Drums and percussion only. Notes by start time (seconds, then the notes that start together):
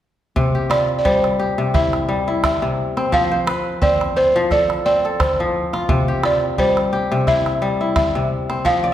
0.36 calabash thump
0.71 calabash click
1.05 calabash thump
1.24 calabash click
1.74 calabash thump, calabash click
1.93 calabash click
2.44 calabash thump, calabash click
2.97 calabash click
3.13 calabash thump
3.47 calabash click
3.82 calabash thump
4.01 calabash click
4.51 calabash thump, calabash click
4.70 calabash click
5.20 calabash thump, calabash click
5.74 calabash click
5.89 calabash thump
6.24 calabash click
6.58 calabash thump
6.77 calabash click
7.27 calabash thump, calabash click
7.46 calabash click
7.96 calabash thump, calabash click
8.50 calabash click
8.65 calabash thump